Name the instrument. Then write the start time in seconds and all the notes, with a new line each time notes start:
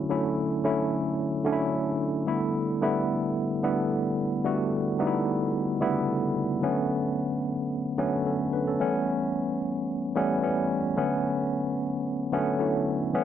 tine electric piano
Already playing: D3 F#3 A3 C#4 E4 F#4
0.10 D3 F#3 A3 C#4 E4
0.64 D3 F#3 A3 C#4 E4
1.45 D3 F#3 A3 C#4 D4
1.53 E4
2.27 D3 G3 A3 B3 E4
2.81 D3 G3 A3 B3 E4
3.63 D3 G3 A3 B3 E4
4.44 D3 G3 A3 B3 F#4
4.99 D3 G3 A3 B3 D#4
5.07 E4
5.80 C#3 G3 A3 B3 E4
5.87 D3
6.62 D3 F#3 A3 B3 C#4
7.98 D3 F#3 A3 B3 C#4
8.26 C#4 A4
8.53 D4 B4
8.67 C#4 A4
8.79 E3 G3 A3 B3 C#4
10.15 E3 G3 A3 B3 C#4
10.42 E3 G3 A3 B3 C#4
10.96 D3 F#3 A3 B3 C#4
12.32 D3 F#3 A3 B3 C#4
12.59 D3 F#3 A3 B3 E4
13.13 E3 G3 A3 B3 C#4